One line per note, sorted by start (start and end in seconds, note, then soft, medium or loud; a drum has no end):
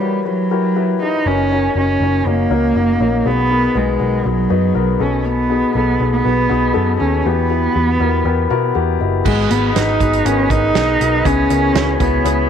0.00 1.28 E3 medium
0.00 0.26 G3 medium
0.00 0.25 E4 medium
0.00 0.25 F#4 medium
0.00 0.25 G4 medium
0.00 0.21 A#4 medium
0.00 0.25 B4 medium
0.00 1.28 C#5 medium
0.25 0.97 F#3 medium
0.25 0.46 E4 medium
0.25 0.46 F#4 medium
0.25 0.46 G4 medium
0.25 0.46 B4 medium
0.51 0.71 E4 medium
0.51 0.71 F#4 medium
0.51 0.71 G4 medium
0.51 0.71 A#4 medium
0.76 0.96 E4 medium
0.76 0.96 F#4 medium
0.76 0.96 G4 medium
0.76 0.96 B4 medium
1.02 1.28 D#4 medium
1.02 1.22 E4 medium
1.02 1.22 F#4 soft
1.02 1.22 G4 medium
1.02 1.22 B4 medium
1.26 1.67 F#1 medium
1.26 1.76 C#4 medium
1.26 1.47 C#4 medium
1.26 1.47 D#4 medium
1.26 1.47 F#4 medium
1.26 1.47 A#4 medium
1.52 1.72 C#4 medium
1.52 1.72 D#4 medium
1.52 1.72 F#4 medium
1.52 1.72 A#4 medium
1.75 1.96 F#1 medium
1.75 2.28 C#4 medium
1.75 1.97 C#4 medium
1.75 1.97 D#4 medium
1.75 1.97 F#4 medium
1.75 1.97 A#4 medium
2.00 2.21 F#1 medium
2.00 2.22 C#4 medium
2.00 2.22 D#4 medium
2.00 2.22 F#4 medium
2.00 2.22 A#4 medium
2.25 2.46 F#1 medium
2.25 3.28 A#3 medium
2.25 2.46 C#4 medium
2.25 2.46 D#4 medium
2.25 2.46 F#4 medium
2.25 2.46 A#4 medium
2.50 2.71 C#2 medium
2.50 2.71 C#4 medium
2.50 2.71 D#4 medium
2.50 2.71 F#4 medium
2.50 2.71 A#4 medium
2.75 2.96 F#1 medium
2.75 2.96 C#4 medium
2.75 2.96 D#4 medium
2.75 2.96 F#4 medium
2.75 2.96 A#4 medium
3.00 3.21 A#1 medium
3.00 3.21 C#4 medium
3.00 3.21 D#4 medium
3.00 3.21 F#4 medium
3.00 3.21 A#4 medium
3.25 3.66 B1 medium
3.25 3.97 B2 medium
3.25 3.46 B3 medium
3.25 3.78 B3 medium
3.25 3.46 D#4 medium
3.25 3.46 F#4 medium
3.25 3.46 G#4 medium
3.50 3.71 B3 medium
3.50 3.71 D#4 medium
3.50 3.71 F#4 medium
3.50 3.71 A#4 medium
3.75 3.96 B1 medium
3.75 4.29 G#3 medium
3.75 3.96 B3 medium
3.75 3.96 D#4 medium
3.75 3.95 F#4 soft
3.75 3.96 B4 medium
3.99 4.21 B1 medium
3.99 4.20 B3 medium
3.99 4.20 D#4 soft
3.99 4.20 F#4 soft
3.99 4.20 A#4 medium
4.25 4.46 B1 medium
4.25 5.02 F#3 medium
4.25 4.45 B3 medium
4.25 4.45 D#4 medium
4.25 4.46 F#4 medium
4.25 4.45 G#4 medium
4.50 4.71 F#2 medium
4.50 4.70 B3 medium
4.50 4.70 D#4 medium
4.50 4.71 F#4 medium
4.50 4.71 B4 medium
4.75 4.96 B1 medium
4.75 4.95 B3 medium
4.75 4.95 D#4 medium
4.75 4.95 F#4 medium
4.75 4.95 A#4 medium
5.00 5.62 B1 medium
5.00 5.71 B2 medium
5.00 5.41 B3 medium
5.00 5.27 C#4 medium
5.00 5.40 D#4 medium
5.00 5.40 F#4 medium
5.00 5.41 A4 medium
5.26 5.75 B3 medium
5.49 5.70 B3 medium
5.49 5.70 D#4 medium
5.49 5.70 F#4 medium
5.49 5.70 G#4 medium
5.75 5.96 B1 medium
5.75 5.96 B3 medium
5.75 6.11 B3 medium
5.75 5.95 D#4 medium
5.75 5.95 F#4 medium
5.75 5.95 A4 medium
6.00 6.21 B1 medium
6.00 6.21 B3 medium
6.00 6.21 D#4 medium
6.00 6.20 F#4 medium
6.00 6.20 G#4 medium
6.12 6.96 B3 medium
6.25 6.46 B1 medium
6.25 6.45 B3 medium
6.25 6.45 D#4 medium
6.25 6.46 F#4 medium
6.25 6.45 B4 medium
6.49 6.71 B1 medium
6.49 6.70 B3 medium
6.49 6.70 D#4 medium
6.49 6.70 F#4 medium
6.49 6.70 G#4 medium
6.74 6.96 F#2 medium
6.74 6.95 B3 medium
6.74 6.95 D#4 medium
6.74 6.95 F#4 medium
6.74 6.95 A4 medium
7.00 7.21 D#2 medium
7.00 7.21 B3 medium
7.00 7.27 C#4 medium
7.00 7.21 D#4 medium
7.00 7.21 F#4 soft
7.00 7.20 A4 medium
7.25 7.66 E2 medium
7.25 7.97 E3 medium
7.25 8.76 B3 medium
7.25 7.46 B3 medium
7.25 7.46 E4 medium
7.25 7.46 F#4 medium
7.25 7.46 G4 medium
7.50 7.70 B3 medium
7.50 7.70 E4 medium
7.50 7.70 F#4 medium
7.50 7.70 G4 medium
7.75 7.96 E2 medium
7.75 7.96 B3 medium
7.75 7.96 E4 medium
7.75 7.96 F#4 soft
7.75 7.96 G4 medium
8.00 8.21 E2 medium
8.00 8.20 B3 medium
8.00 8.20 E4 medium
8.00 8.21 F#4 medium
8.00 8.20 A#4 medium
8.00 8.23 B5 medium
8.25 8.46 E2 medium
8.25 8.46 B3 medium
8.25 8.46 E4 medium
8.25 8.46 F#4 medium
8.25 8.45 A#4 medium
8.25 8.72 G5 medium
8.50 8.71 B2 medium
8.50 8.70 B3 medium
8.50 8.70 E4 medium
8.50 8.71 F#4 medium
8.50 8.71 A#4 loud
8.74 8.96 E2 medium
8.74 8.95 B3 medium
8.74 8.95 E4 medium
8.74 8.95 F#4 medium
8.74 8.95 G4 medium
8.74 8.98 F#5 medium
9.00 9.21 F#1 medium
9.00 9.21 B3 medium
9.00 9.21 E4 medium
9.00 9.21 F#4 medium
9.00 9.21 A#4 medium
9.00 9.24 D#5 medium
9.25 9.46 G#1 medium
9.25 9.97 G#2 soft
9.25 9.52 G#3 medium
9.25 9.46 B3 medium
9.25 9.46 D#4 medium
9.25 9.46 F#4 medium
9.25 12.50 G#4 medium
9.25 9.46 G#4 medium
9.25 11.23 D#5 medium
9.25 11.23 F#5 soft
9.25 12.50 B5 medium
9.25 kick medium
9.25 crash medium
9.50 9.71 G#1 medium
9.50 9.70 B3 medium
9.50 9.75 B3 medium
9.50 9.70 D#4 medium
9.50 9.70 F#4 medium
9.50 9.70 G#4 medium
9.50 closed hi-hat medium
9.75 9.96 G#1 medium
9.75 9.95 B3 medium
9.75 9.95 D#4 medium
9.75 10.27 D#4 medium
9.75 9.95 F#4 medium
9.75 9.95 G#4 medium
9.75 snare medium
9.75 closed hi-hat medium
10.00 10.21 G#1 medium
10.00 10.21 B3 medium
10.00 10.20 D#4 medium
10.00 10.20 F#4 medium
10.00 10.21 G#4 medium
10.00 kick medium
10.00 closed hi-hat medium
10.13 closed hi-hat soft
10.25 10.46 G#1 medium
10.25 10.45 B3 medium
10.25 10.52 C#4 medium
10.25 10.45 D#4 medium
10.25 10.45 F#4 medium
10.25 10.45 A#4 medium
10.25 closed hi-hat medium
10.50 10.71 G#1 medium
10.50 10.70 B3 medium
10.50 10.70 D#4 medium
10.50 11.28 D#4 loud
10.50 10.70 F#4 medium
10.50 10.70 A#4 medium
10.50 kick medium
10.50 closed hi-hat medium
10.75 10.96 B1 medium
10.75 10.95 B3 medium
10.75 10.95 D#4 medium
10.75 10.95 F#4 medium
10.75 10.95 G#4 medium
10.75 snare loud
10.75 closed hi-hat medium
11.01 11.21 B1 medium
11.01 11.21 B3 medium
11.01 11.21 D#4 medium
11.01 11.21 F#4 medium
11.01 11.21 A#4 medium
11.01 closed hi-hat medium
11.24 11.46 C#2 medium
11.24 11.96 C#3 medium
11.24 11.45 B3 medium
11.24 11.45 C#4 medium
11.24 11.99 C#4 loud
11.24 11.45 E4 medium
11.24 11.45 G#4 medium
11.24 12.50 C#5 medium
11.24 12.50 G#5 medium
11.24 kick medium
11.24 closed hi-hat medium
11.50 11.71 C#2 medium
11.50 11.70 B3 medium
11.50 11.70 C#4 medium
11.50 11.70 E4 medium
11.50 11.70 A#4 medium
11.50 closed hi-hat medium
11.75 11.95 C#2 medium
11.75 11.95 B3 medium
11.75 11.95 C#4 medium
11.75 11.95 E4 medium
11.75 11.95 F#4 medium
11.75 snare medium
11.75 closed hi-hat medium
11.99 12.21 C#2 loud
11.99 12.20 B3 medium
11.99 12.50 B3 medium
11.99 12.20 C#4 medium
11.99 12.20 E4 medium
11.99 12.20 B4 medium
11.99 kick medium
11.99 closed hi-hat medium
12.24 12.45 C#2 medium
12.24 12.45 B3 medium
12.24 12.45 C#4 medium
12.24 12.45 E4 medium
12.24 12.45 G#4 medium
12.24 closed hi-hat medium